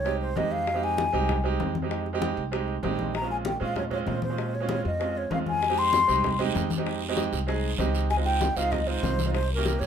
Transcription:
Already playing: C2 C#5
0.05 G#3 C4 D#4 G4, high bongo, high conga
0.21 C5, high conga
0.36 F2 G#3 C4 D#4 G4 D#5, high bongo, low bongo, high conga
0.52 F5, high bongo
0.67 high bongo, high conga
0.74 G#3 C4 D#4 G4
0.83 G#5, high bongo, high conga
0.98 high bongo, high conga
1.13 C2 G#3 C4 D#4 G4, high bongo, high conga
1.29 high bongo, high conga, low conga
1.44 G#3 C4 D#4 G4, high conga
1.60 F2, high bongo, low bongo, high conga
1.75 high bongo, high conga
1.82 G#3 C4 D#4 G4
1.91 high bongo, high conga
2.06 high bongo, high conga
2.13 G#3 C4 D#4 G4
2.22 high bongo, high conga
2.37 C2, high bongo, high conga
2.52 G#3 C4 D#4 G4, high bongo, high conga
2.68 high conga
2.83 A#1 G#3 C4 D#4 G4, high bongo, low bongo, high conga
2.99 high bongo, high conga
3.14 A#5, high bongo, high conga
3.21 G#3 C4 C#4 F4
3.30 G#5, high bongo, high conga
3.45 G5, high bongo, high conga
3.60 A#2 G#3 C4 C#4 F4 F5, high bongo, high conga
3.76 C#5, high bongo, high conga, low conga
3.90 G#3 C4 C#4 F4 C#5, high conga, low conga
4.07 A#2 C5, high bongo, low bongo, high conga
4.22 C5, high bongo, high conga
4.30 G#3 C4 C#4 F4
4.38 high bongo, high conga
4.53 C#5, high bongo, high conga
4.60 G#3 C4 C#4 F4
4.69 C#5, high bongo, high conga
4.84 F2 D#5, high bongo, high conga
5.00 G#3 C4 C#4 F4, high bongo, high conga
5.15 C#5, high conga
5.30 F2 G#3 C4 C#4 F4 F5, high bongo, low bongo, high conga
5.46 G#5, high bongo, high conga
5.62 high bongo, high conga, long guiro
5.69 G#3 C4 D#4 G4
5.78 C6, high bongo
5.93 high bongo, high conga, short guiro
6.07 C2 G#3 C4 D#4 G4, high bongo, high conga, short guiro
6.24 high bongo, high conga, low conga, long guiro
6.39 G#3 C4 D#4 G4, high conga, low conga
6.55 F2, high bongo, low bongo, high conga, short guiro
6.70 high bongo, high conga, short guiro
6.77 G#3 C4 D#4 G4
6.86 high bongo, high conga, long guiro
7.02 high bongo
7.09 G#3 C4 D#4 G4
7.17 high bongo, high conga, short guiro
7.32 C2, high bongo, high conga, short guiro
7.47 G#3 C4 D#4 G#4, high bongo, high conga, long guiro
7.63 high conga
7.78 C#2 G#3 C4 D#4 G4, high bongo, low bongo, high conga, short guiro
7.95 high bongo, short guiro
8.10 G#5, high bongo, high conga, long guiro
8.17 G#3 C4 D#4 F4
8.25 G5, high bongo, high conga
8.41 high bongo, high conga, short guiro
8.56 C#2 G#3 C4 D#4 F4 F5, high bongo, high conga, short guiro
8.72 D#5, high bongo, high conga, low conga, long guiro
8.86 G#3 C4 D#4 F4 C5, high conga
9.03 C2, high bongo, low bongo, high conga, short guiro
9.19 high bongo, high conga, short guiro
9.26 G#3 C4 D#4 F4
9.34 C5, high bongo, high conga, long guiro
9.50 A#4, high bongo, high conga
9.56 A#3 C#4 E4 G4
9.65 high bongo, high conga, short guiro
9.80 G2 C#5, high bongo, high conga, short guiro

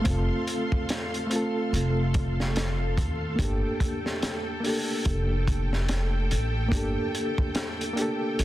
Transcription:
Already playing: A4 F5 C6
0.01 A3 C4, closed hi-hat
0.06 F1 F4, kick
0.10 A4
0.47 closed hi-hat
0.72 kick
0.89 snare, closed hi-hat
1.14 closed hi-hat
1.27 A3 C4, closed hi-hat
1.33 F4 A4
1.73 F1, closed hi-hat
2.14 kick, closed hi-hat
2.40 snare
2.56 snare, closed hi-hat
2.97 D#2, kick, closed hi-hat
3.36 G1 A#3 D4 G5, kick, closed hi-hat
3.41 G4 A4
3.80 kick, closed hi-hat
4.06 snare
4.22 snare, closed hi-hat
4.60 A#3 D4, open hi-hat
4.67 G4 A4
5.05 F1, kick, closed hi-hat
5.48 kick, closed hi-hat
5.73 snare
5.88 snare, closed hi-hat
6.31 A1, closed hi-hat
6.68 G1 A#3 D4, kick
6.73 G4, closed hi-hat
6.77 A4
7.15 closed hi-hat
7.38 kick
7.55 snare, closed hi-hat
7.81 closed hi-hat
7.93 A#3 D4
7.97 G4, closed hi-hat
8.02 A4
8.39 G1, closed hi-hat

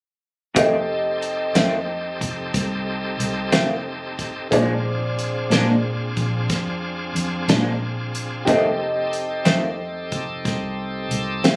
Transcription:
0.55 F1 F2 D#3 A3 C4 D#4 G4 A4 D#5, kick, closed hi-hat
1.22 closed hi-hat
1.55 F2 D#3 A3 C4, snare, closed hi-hat
2.21 F1, kick, closed hi-hat
2.54 C2, kick, closed hi-hat
3.20 C2, closed hi-hat
3.52 F1 F2 D#3 A3 C4, snare, closed hi-hat
4.19 kick, closed hi-hat
4.51 A#1 A#2 F3 G#3 C4 D4 F4 G#4 C5 D5, kick, closed hi-hat
5.19 closed hi-hat
5.50 A#2 F3 G#3 D4, snare, closed hi-hat
6.17 A#1, kick, closed hi-hat
6.50 F2, kick, snare, closed hi-hat
7.15 F2, closed hi-hat
7.48 A#1 A#2 F3 G#3 D4, snare, closed hi-hat
8.15 closed hi-hat
8.45 F1 F2 D#3 A3 C4 D#4 G4 A4 D#5, kick, closed hi-hat
9.13 closed hi-hat
9.45 F2 D#3 A3 C4, snare, closed hi-hat
10.12 F1, kick, closed hi-hat
10.45 C2, kick, snare, closed hi-hat
11.11 C2, closed hi-hat
11.44 F1 F2 D#3 A3 C4, snare, closed hi-hat

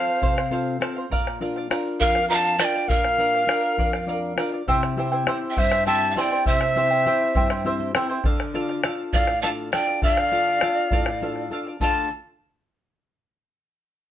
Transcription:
Already playing: C4 F4 A4 C5 F5
0.21 C3 A4 C5 F5, bombo low
0.36 C5 F5, bombo rim
0.51 C4 F4 A4 C5 F5, bombo rim
0.80 C4 F4 A4 C5 F5, bombo rim
0.96 C5 F5
1.10 A#2 A#4 D5 F5, bombo rim, bombo low
1.27 bombo rim
1.41 D4 F4 A#4 D5 F5
1.56 D5 F5, bombo rim
1.71 D4 F4 A#4 D5 F5, bombo rim
2.00 F2 A#4 D5 F5, bombo low
2.15 D5 F5, bombo rim
2.29 D4 F4 A#4 D5 F5 A#5, bombo rim
2.34 A5
2.59 D4 F4 A#4 D5 F5 A5, bombo rim
2.64 G5
2.75 D5 F5
2.88 A#2 A#4 D5 F5, bombo low
3.04 bombo rim
3.18 D4 F4 A#4 D5 F5, bombo rim
3.34 D5 F5, bombo rim
3.47 D4 F4 A#4 D5 F5, bombo rim
3.77 F2 A#4 D5 F5, bombo rim, bombo low
3.93 D5 F5, bombo rim
4.07 D4 F4 A#4 D5 F5, bombo rim
4.37 D4 F4 A#4 D5 F5, bombo rim
4.52 D5 F5
4.68 C3 E4 G4 C5 E5 G5, bombo rim, bombo low
4.83 bombo rim
4.96 C4 E4 G4 C5 E5 G5
5.12 E4 C5 G5, bombo rim
5.27 C4 E4 G4 C5 E5 G5, bombo rim
5.50 E5 G5
5.56 G2 E4 C5 E5 G5, bombo low
5.71 E4 C5 G5, bombo rim
5.86 C4 E4 G4 C5 E5 G5 A5, bombo rim
6.10 F5 A5
6.16 C4 E4 G4 C5 D5 E5 G5 A5
6.21 G5
6.31 E4 C5 G5
6.46 C3 E4 C5 E5 G5, bombo rim, bombo low
6.61 bombo rim
6.76 C4 E4 G4 C5 E5 G5
6.90 E4 C5 G5
7.06 C4 E4 G4 C5 E5 G5
7.35 G2 E4 C5 E5 G5, bombo low
7.50 E4 C5 G5, bombo rim
7.65 C4 E4 G4 C5 E5 G5, bombo rim
7.80 C5
7.95 C4 E4 G4 A4 C5 E5 G5, bombo rim
8.09 E4 C5 G5
8.24 D3 A4 D5 F5, bombo rim, bombo low
8.40 bombo rim
8.54 D4 F4 A4 D5 F5
8.69 D5 F5, bombo rim
8.83 D4 F4 A4 D5 F5, bombo rim
9.13 A2 A4 D5 F5, bombo low
9.27 D5 F5, bombo rim
9.42 D4 F4 A4 D5 F5 A5, bombo rim
9.72 D4 F4 A4 D5 F5 G5, bombo rim
9.87 D5 F5
10.02 D3 A4 D5 E5 F5, bombo rim, bombo low
10.15 F5, bombo rim
10.32 D4 F4 A4 D5 F5, bombo rim
10.47 D5 F5
10.61 D4 F4 A4 D5 F5, bombo rim
10.91 A2 A4 D5 F5, bombo low
11.06 D5 F5, bombo rim
11.22 D4 F4 A4 D5 F5
11.36 bombo rim
11.50 D4 F4 A4 D5 F5
11.67 D5 F5
11.80 D3 A3 D4 F4 A4 D5 F5 A5, bombo low

